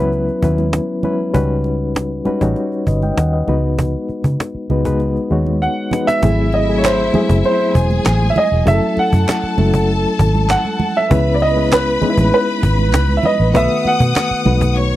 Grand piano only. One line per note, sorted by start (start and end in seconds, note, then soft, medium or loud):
0.00 0.39 B4 medium
5.62 6.09 F#5 medium
6.07 6.50 E5 loud
6.54 6.78 D#5 medium
6.78 6.84 C#5 medium
6.85 7.41 C5 medium
7.45 8.26 C5 medium
8.30 8.37 E5 medium
8.38 8.65 D#5 medium
8.68 8.96 E5 medium
8.99 9.86 F#5 medium
10.50 10.97 F#5 medium
10.97 11.32 E5 medium
11.34 11.41 D5 medium
11.42 11.70 D#5 medium
11.73 12.29 B4 medium
12.34 13.14 B4 loud
13.17 13.24 E5 medium
13.25 13.56 D#5 medium
13.57 13.87 E5 medium
13.87 14.74 F#5 medium